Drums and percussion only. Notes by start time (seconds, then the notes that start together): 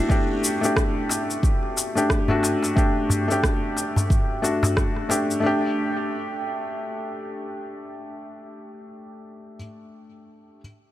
0.10 kick, cabasa
0.44 cabasa
0.64 cabasa
0.77 kick, cross-stick, cabasa
1.09 darbuka tek, cabasa
1.31 cabasa
1.43 kick, cabasa
1.63 darbuka ka
1.77 darbuka ka, cabasa
1.97 cabasa
2.10 kick, cross-stick, cabasa
2.28 darbuka ka, darbuka dum
2.43 darbuka tek, cabasa
2.63 darbuka tek, cabasa
2.77 kick, cabasa
3.10 darbuka ka, darbuka tek, darbuka dum, cabasa
3.31 cabasa
3.43 kick, cross-stick, cabasa
3.77 darbuka tek, cabasa
3.96 darbuka ka, darbuka dum, cabasa
4.10 kick, cabasa
4.43 darbuka ka, darbuka tek, cabasa
4.63 darbuka ka, darbuka tek, darbuka dum, cabasa
4.77 kick, cross-stick, cabasa
4.96 cross-stick
5.10 darbuka ka, darbuka tek, cabasa
5.31 cabasa